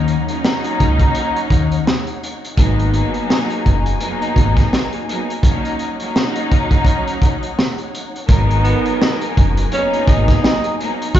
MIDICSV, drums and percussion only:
0, 0, Header, 1, 2, 480
1, 0, Start_track
1, 0, Key_signature, 5, "minor"
1, 0, Tempo, 714286
1, 1730, Time_signature, 4, 2, 24, 8
1, 7524, End_track
2, 0, Start_track
2, 0, Title_t, "Drums"
2, 52, Note_on_c, 9, 42, 65
2, 119, Note_off_c, 9, 42, 0
2, 191, Note_on_c, 9, 42, 50
2, 258, Note_off_c, 9, 42, 0
2, 299, Note_on_c, 9, 38, 121
2, 366, Note_off_c, 9, 38, 0
2, 432, Note_on_c, 9, 42, 59
2, 499, Note_off_c, 9, 42, 0
2, 539, Note_on_c, 9, 36, 90
2, 539, Note_on_c, 9, 42, 75
2, 606, Note_off_c, 9, 36, 0
2, 606, Note_off_c, 9, 42, 0
2, 669, Note_on_c, 9, 36, 98
2, 673, Note_on_c, 9, 42, 59
2, 736, Note_off_c, 9, 36, 0
2, 740, Note_off_c, 9, 42, 0
2, 771, Note_on_c, 9, 42, 82
2, 838, Note_off_c, 9, 42, 0
2, 916, Note_on_c, 9, 42, 53
2, 983, Note_off_c, 9, 42, 0
2, 1011, Note_on_c, 9, 36, 93
2, 1020, Note_on_c, 9, 42, 77
2, 1078, Note_off_c, 9, 36, 0
2, 1088, Note_off_c, 9, 42, 0
2, 1153, Note_on_c, 9, 42, 56
2, 1220, Note_off_c, 9, 42, 0
2, 1259, Note_on_c, 9, 38, 119
2, 1326, Note_off_c, 9, 38, 0
2, 1391, Note_on_c, 9, 42, 46
2, 1458, Note_off_c, 9, 42, 0
2, 1502, Note_on_c, 9, 42, 85
2, 1569, Note_off_c, 9, 42, 0
2, 1643, Note_on_c, 9, 42, 59
2, 1710, Note_off_c, 9, 42, 0
2, 1730, Note_on_c, 9, 36, 120
2, 1737, Note_on_c, 9, 42, 91
2, 1798, Note_off_c, 9, 36, 0
2, 1804, Note_off_c, 9, 42, 0
2, 1878, Note_on_c, 9, 42, 48
2, 1945, Note_off_c, 9, 42, 0
2, 1973, Note_on_c, 9, 42, 66
2, 2040, Note_off_c, 9, 42, 0
2, 2111, Note_on_c, 9, 42, 50
2, 2178, Note_off_c, 9, 42, 0
2, 2219, Note_on_c, 9, 38, 117
2, 2287, Note_off_c, 9, 38, 0
2, 2352, Note_on_c, 9, 42, 56
2, 2419, Note_off_c, 9, 42, 0
2, 2459, Note_on_c, 9, 36, 86
2, 2460, Note_on_c, 9, 42, 77
2, 2527, Note_off_c, 9, 36, 0
2, 2527, Note_off_c, 9, 42, 0
2, 2593, Note_on_c, 9, 42, 61
2, 2660, Note_off_c, 9, 42, 0
2, 2691, Note_on_c, 9, 42, 82
2, 2758, Note_off_c, 9, 42, 0
2, 2836, Note_on_c, 9, 42, 52
2, 2903, Note_off_c, 9, 42, 0
2, 2931, Note_on_c, 9, 36, 92
2, 2940, Note_on_c, 9, 42, 80
2, 2998, Note_off_c, 9, 36, 0
2, 3007, Note_off_c, 9, 42, 0
2, 3069, Note_on_c, 9, 36, 91
2, 3072, Note_on_c, 9, 42, 54
2, 3076, Note_on_c, 9, 38, 35
2, 3136, Note_off_c, 9, 36, 0
2, 3139, Note_off_c, 9, 42, 0
2, 3143, Note_off_c, 9, 38, 0
2, 3179, Note_on_c, 9, 38, 114
2, 3246, Note_off_c, 9, 38, 0
2, 3310, Note_on_c, 9, 42, 48
2, 3377, Note_off_c, 9, 42, 0
2, 3422, Note_on_c, 9, 42, 83
2, 3489, Note_off_c, 9, 42, 0
2, 3563, Note_on_c, 9, 42, 57
2, 3630, Note_off_c, 9, 42, 0
2, 3650, Note_on_c, 9, 36, 119
2, 3656, Note_on_c, 9, 42, 94
2, 3717, Note_off_c, 9, 36, 0
2, 3724, Note_off_c, 9, 42, 0
2, 3797, Note_on_c, 9, 42, 51
2, 3864, Note_off_c, 9, 42, 0
2, 3892, Note_on_c, 9, 42, 64
2, 3959, Note_off_c, 9, 42, 0
2, 4030, Note_on_c, 9, 42, 50
2, 4097, Note_off_c, 9, 42, 0
2, 4139, Note_on_c, 9, 38, 119
2, 4206, Note_off_c, 9, 38, 0
2, 4271, Note_on_c, 9, 42, 58
2, 4338, Note_off_c, 9, 42, 0
2, 4378, Note_on_c, 9, 42, 74
2, 4379, Note_on_c, 9, 36, 87
2, 4446, Note_off_c, 9, 36, 0
2, 4446, Note_off_c, 9, 42, 0
2, 4508, Note_on_c, 9, 36, 94
2, 4512, Note_on_c, 9, 42, 59
2, 4576, Note_off_c, 9, 36, 0
2, 4579, Note_off_c, 9, 42, 0
2, 4600, Note_on_c, 9, 36, 89
2, 4610, Note_on_c, 9, 42, 80
2, 4667, Note_off_c, 9, 36, 0
2, 4677, Note_off_c, 9, 42, 0
2, 4754, Note_on_c, 9, 42, 52
2, 4821, Note_off_c, 9, 42, 0
2, 4850, Note_on_c, 9, 36, 95
2, 4859, Note_on_c, 9, 42, 79
2, 4917, Note_off_c, 9, 36, 0
2, 4926, Note_off_c, 9, 42, 0
2, 4991, Note_on_c, 9, 42, 55
2, 5058, Note_off_c, 9, 42, 0
2, 5098, Note_on_c, 9, 38, 115
2, 5165, Note_off_c, 9, 38, 0
2, 5229, Note_on_c, 9, 42, 47
2, 5296, Note_off_c, 9, 42, 0
2, 5340, Note_on_c, 9, 42, 81
2, 5407, Note_off_c, 9, 42, 0
2, 5482, Note_on_c, 9, 42, 58
2, 5549, Note_off_c, 9, 42, 0
2, 5569, Note_on_c, 9, 36, 123
2, 5576, Note_on_c, 9, 42, 98
2, 5637, Note_off_c, 9, 36, 0
2, 5643, Note_off_c, 9, 42, 0
2, 5716, Note_on_c, 9, 42, 52
2, 5783, Note_off_c, 9, 42, 0
2, 5811, Note_on_c, 9, 42, 64
2, 5878, Note_off_c, 9, 42, 0
2, 5950, Note_on_c, 9, 42, 48
2, 6017, Note_off_c, 9, 42, 0
2, 6058, Note_on_c, 9, 38, 118
2, 6126, Note_off_c, 9, 38, 0
2, 6191, Note_on_c, 9, 42, 61
2, 6258, Note_off_c, 9, 42, 0
2, 6299, Note_on_c, 9, 36, 92
2, 6299, Note_on_c, 9, 42, 74
2, 6366, Note_off_c, 9, 36, 0
2, 6366, Note_off_c, 9, 42, 0
2, 6432, Note_on_c, 9, 42, 62
2, 6500, Note_off_c, 9, 42, 0
2, 6530, Note_on_c, 9, 42, 81
2, 6597, Note_off_c, 9, 42, 0
2, 6676, Note_on_c, 9, 42, 55
2, 6743, Note_off_c, 9, 42, 0
2, 6770, Note_on_c, 9, 36, 97
2, 6779, Note_on_c, 9, 42, 81
2, 6838, Note_off_c, 9, 36, 0
2, 6846, Note_off_c, 9, 42, 0
2, 6909, Note_on_c, 9, 36, 90
2, 6912, Note_on_c, 9, 42, 55
2, 6916, Note_on_c, 9, 38, 36
2, 6977, Note_off_c, 9, 36, 0
2, 6979, Note_off_c, 9, 42, 0
2, 6983, Note_off_c, 9, 38, 0
2, 7018, Note_on_c, 9, 38, 121
2, 7086, Note_off_c, 9, 38, 0
2, 7150, Note_on_c, 9, 42, 49
2, 7217, Note_off_c, 9, 42, 0
2, 7261, Note_on_c, 9, 42, 83
2, 7328, Note_off_c, 9, 42, 0
2, 7403, Note_on_c, 9, 42, 61
2, 7471, Note_off_c, 9, 42, 0
2, 7490, Note_on_c, 9, 36, 125
2, 7497, Note_on_c, 9, 42, 96
2, 7524, Note_off_c, 9, 36, 0
2, 7524, Note_off_c, 9, 42, 0
2, 7524, End_track
0, 0, End_of_file